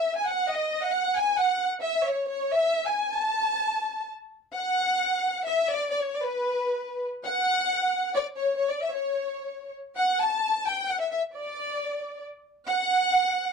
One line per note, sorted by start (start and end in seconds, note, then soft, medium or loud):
0.00 0.16 E5 medium
0.16 0.26 G#5 medium
0.27 0.49 F#5 medium
0.50 0.83 D#5 medium
0.83 1.16 F#5 medium
1.18 1.39 G#5 loud
1.37 1.71 F#5 loud
1.82 2.03 E5 medium
2.06 2.27 C#5 medium
2.29 2.49 C#5 medium
2.52 2.84 E5 loud
2.85 3.18 G#5 medium
3.17 4.08 A5 medium
4.53 5.41 F#5 loud
5.45 5.66 E5 medium
5.69 5.90 D5 loud
5.91 6.02 D5 medium
6.01 6.13 C#5 medium
6.14 6.25 D5 medium
6.24 7.03 B4 medium
7.25 8.12 F#5 loud
8.15 8.25 D5 medium
8.36 8.56 C#5 medium
8.57 8.70 C#5 medium
8.70 8.83 D5 medium
8.82 8.94 E5 medium
8.93 9.70 C#5 medium
9.97 10.19 F#5 loud
10.21 10.67 A5 loud
10.67 10.89 G5 loud
10.89 11.01 F#5 medium
11.00 11.10 E5 medium
11.11 11.21 E5 medium
11.35 12.20 D5 medium
12.67 13.53 F#5 loud